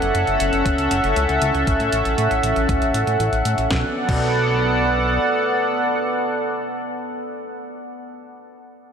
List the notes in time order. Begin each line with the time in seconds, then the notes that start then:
Already playing: C#4 A4 E5 F#5
0.02 F#1, closed hi-hat
0.15 F#1, closed hi-hat
0.27 F#1, closed hi-hat
0.40 F#1, closed hi-hat
0.53 F#1, closed hi-hat
0.66 F#1, kick, closed hi-hat
0.78 C#2, closed hi-hat
0.91 F#1, closed hi-hat
1.04 F#1, closed hi-hat
1.16 C#2, closed hi-hat
1.29 C#2, closed hi-hat
1.42 C#2, closed hi-hat
1.55 C#2, closed hi-hat
1.67 A1, kick, closed hi-hat
1.80 A2, closed hi-hat
1.93 A1, closed hi-hat
2.05 A1, closed hi-hat
2.18 A2, closed hi-hat
2.31 A1, closed hi-hat
2.43 A1, closed hi-hat
2.56 A1, closed hi-hat
2.69 A1, kick, closed hi-hat
2.82 A1, closed hi-hat
2.94 A1, closed hi-hat
3.07 A2, closed hi-hat
3.20 A1, closed hi-hat
3.32 A1, closed hi-hat
3.45 A2, closed hi-hat
3.58 A1, closed hi-hat
3.71 B1 B3 A4 D5 F#5, kick, snare
4.09 B1, kick, crash